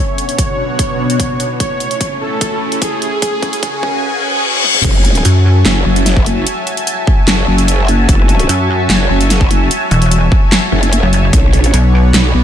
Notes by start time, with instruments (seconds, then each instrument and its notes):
Already playing: analog synth pad B2 B3 D4 F#4 F#5, supersaw synth C#5, riser
0.18 closed hi-hat
0.29 closed hi-hat
0.38 kick, closed hi-hat
0.79 kick, closed hi-hat
1.10 closed hi-hat
1.20 kick, closed hi-hat
1.40 closed hi-hat
1.60 analog synth pad A3 C#4 E4, supersaw synth C#5, kick, closed hi-hat
1.80 closed hi-hat
1.91 closed hi-hat
2.01 kick, closed hi-hat
2.21 supersaw synth A4
2.41 kick, closed hi-hat
2.72 closed hi-hat
2.82 supersaw synth G#4, kick, closed hi-hat
3.02 closed hi-hat
3.22 analog synth pad C#3 C#4 F#4 G#4 G#5, kick, closed hi-hat
3.42 kick, closed hi-hat
3.53 closed hi-hat
3.63 kick, closed hi-hat
3.83 kick
4.03 reverse cymbal
4.64 high tom
4.75 mid tom
4.84 wobble bass F#1, analog synth pad F#4 C#5 E5 G#5 A5, kick, closed hi-hat, crash
5.05 closed hi-hat
5.15 closed hi-hat
5.25 wobble bass F#2, closed hi-hat
5.65 wobble bass F#1, snare, clap, closed hi-hat
5.86 wobble bass F#1
5.96 closed hi-hat
6.06 snare, closed hi-hat
6.17 kick
6.26 closed hi-hat
6.47 closed hi-hat
6.67 closed hi-hat
6.77 closed hi-hat
6.87 closed hi-hat
7.07 kick
7.28 wobble bass F#1, snare, clap, closed hi-hat
7.48 wobble bass F#1
7.58 closed hi-hat
7.68 closed hi-hat
7.88 closed hi-hat
8.09 wobble bass F#1, kick, closed hi-hat
8.29 closed hi-hat
8.39 closed hi-hat
8.49 wobble bass F#2, closed hi-hat
8.90 wobble bass F#1, snare, clap, closed hi-hat
9.10 wobble bass F#1
9.21 closed hi-hat
9.30 snare, closed hi-hat
9.41 kick
9.51 closed hi-hat
9.71 closed hi-hat
9.91 wobble bass E1, closed hi-hat
10.02 closed hi-hat
10.11 closed hi-hat
10.32 kick
10.52 snare, clap, closed hi-hat
10.72 wobble bass F#1
10.83 closed hi-hat
10.93 closed hi-hat
11.03 wobble bass F#1
11.13 closed hi-hat
11.33 wobble bass B1, analog synth pad B3 B4 D5 F#5, kick, closed hi-hat
11.53 closed hi-hat
11.64 closed hi-hat
11.74 wobble bass B1, closed hi-hat
12.14 wobble bass B1, snare, clap, closed hi-hat
12.34 wobble bass B1